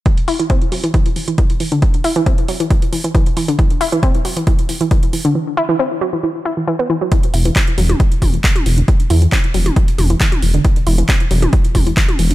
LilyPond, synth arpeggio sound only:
\new Staff \with { instrumentName = "Synth arpeggio sound" } { \clef bass \time 4/4 \key c \lydian \tempo 4 = 136 e16 r16 e'16 e16 c'16 r16 fis16 e16 e16 r16 e16 e16 e16 r16 e16 d16 | e16 r16 e'16 e16 c'16 r16 fis16 e16 e16 r16 e16 e16 e16 r16 e16 d16 | e16 r16 e'16 e16 c'16 r16 fis16 e16 e16 r16 e16 e16 e16 r16 e16 d16 | e16 r16 e'16 e16 c'16 r16 fis16 e16 e16 r16 e'16 e16 e16 b16 e16 fis16 |
e16 r16 e'16 e16 c'16 r16 fis16 e16 e16 r16 e16 e16 e16 r16 e16 d16 | e16 r16 e'16 e16 c'16 r16 fis16 e16 e16 r16 e16 e16 e16 r16 e16 d16 | e16 r16 e'16 e16 c'16 r16 fis16 e16 e16 r16 e16 e16 e16 r16 e16 d16 | }